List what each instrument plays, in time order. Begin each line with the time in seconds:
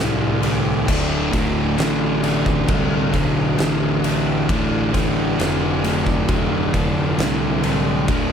Already playing: picked electric bass C2, overdriven electric guitar D2 A2, distorted electric guitar D2 A2 D3
0.00 overdriven electric guitar D3, snare
0.42 overdriven electric guitar D2 A2 D3, ride
0.87 picked electric bass D1, overdriven electric guitar D2 A2 D3, kick, crash
1.32 overdriven electric guitar D2 A2 D3, kick, snare, ride
1.77 picked electric bass A1, overdriven electric guitar D2 A2 D3, snare, ride
2.23 overdriven electric guitar D2 A2 D3, ride
2.46 kick
2.68 picked electric bass C2, overdriven electric guitar D2 A2 D3, kick, ride
3.13 picked electric bass B1, overdriven electric guitar D2 A2 D3, kick, ride
3.58 picked electric bass A1, overdriven electric guitar D2 A2 D3, snare, ride
4.03 overdriven electric guitar D2 A2 D3, ride
4.49 picked electric bass A1, overdriven electric guitar D2 A2 D3, kick, ride
4.93 overdriven electric guitar D2 A2 D3, kick, snare, ride
5.38 picked electric bass F1, overdriven electric guitar D2 A2 D3, snare, ride
5.84 overdriven electric guitar D2 A2 D3, ride
6.07 kick
6.28 picked electric bass F1, overdriven electric guitar D2 A2 D3, kick, ride
6.73 overdriven electric guitar D2 A2 D3, kick, ride
7.18 picked electric bass C2, overdriven electric guitar D2 A2 D3, snare, ride
7.63 overdriven electric guitar D2 A2 D3, ride
8.08 picked electric bass D1, overdriven electric guitar D2 A2 D3, kick, ride